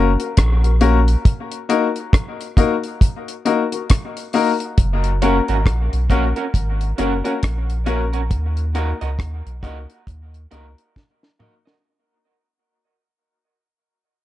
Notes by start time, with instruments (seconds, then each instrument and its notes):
Already playing: sub bass F#1
0.20 grand piano F#4 A#4, closed hi-hat
0.37 sub bass A#1, kick, cross-stick, closed hi-hat
0.63 grand piano F#4 A#4, closed hi-hat
0.81 grand piano A#3 C#4 F#4 A#4, closed hi-hat
1.08 closed hi-hat
1.25 kick, closed hi-hat
1.52 closed hi-hat
1.69 grand piano A#3 D#4 F#4 A#4, closed hi-hat
1.96 closed hi-hat
2.13 kick, cross-stick, closed hi-hat
2.41 closed hi-hat
2.57 grand piano A#3 D#4 F#4 A#4, kick, closed hi-hat
2.84 closed hi-hat
3.01 kick, closed hi-hat
3.28 closed hi-hat
3.45 grand piano A#3 D#4 F#4 A#4, closed hi-hat
3.72 grand piano F#4 A#4, closed hi-hat
3.90 kick, cross-stick, closed hi-hat
4.17 closed hi-hat
4.33 grand piano A#3 D#4 F#4 A#4, open hi-hat
4.60 closed hi-hat
4.78 sub bass F#1, kick, closed hi-hat
5.04 closed hi-hat
5.22 grand piano A#3 C#4 F#4 A#4, clean electric guitar C#4 F#4 A#4, closed hi-hat
5.48 sub bass G#1, clean electric guitar C#4 F#4 A#4, closed hi-hat
5.66 sub bass A#1, kick, cross-stick, closed hi-hat
5.93 sub bass B1, closed hi-hat
6.10 sub bass A#1, grand piano A#3 C#4 F#4 A#4, clean electric guitar C#4 F#4 A#4, kick, closed hi-hat
6.36 clean electric guitar C#4 F#4 A#4, closed hi-hat
6.54 sub bass G#1, kick, closed hi-hat
6.81 closed hi-hat
6.98 sub bass F#1, grand piano A#3 C#4 F#4 A#4, clean electric guitar C#4 F#4 A#4, closed hi-hat
7.24 grand piano A#3 C#4 F#4 A#4, clean electric guitar C#4 F#4 A#4, closed hi-hat
7.43 sub bass A#1, kick, cross-stick, closed hi-hat
7.70 closed hi-hat
7.86 grand piano A#3 C#4 F#4 A#4, clean electric guitar C#4 F#4 A#4, closed hi-hat
8.13 clean electric guitar C#4 F#4 A#4, closed hi-hat
8.31 sub bass D#2, kick, closed hi-hat
8.57 closed hi-hat
8.75 grand piano A#3 D#4 F#4 A#4, clean electric guitar F#4 A#4 D#5, closed hi-hat
9.01 sub bass C#2, clean electric guitar F#4 A#4 D#5, closed hi-hat
9.19 sub bass D#2, kick, cross-stick, closed hi-hat
9.46 sub bass B1, closed hi-hat
9.63 sub bass C#2, grand piano A#3 D#4 F#4 A#4, clean electric guitar F#4 A#4 D#5, kick, closed hi-hat
9.90 closed hi-hat
10.07 sub bass D#2, kick, closed hi-hat
10.34 closed hi-hat
10.51 sub bass C#2, grand piano A#3 D#4 F#4 A#4, clean electric guitar F#4 A#4 D#5, closed hi-hat
10.78 closed hi-hat
10.96 kick, snare
11.23 snare
11.39 grand piano A#3 D#4 F#4 A#4, clean electric guitar F#4 A#4 D#5, mid tom
11.65 grand piano F#4 A#4, clean electric guitar F#4 A#4 D#5, snare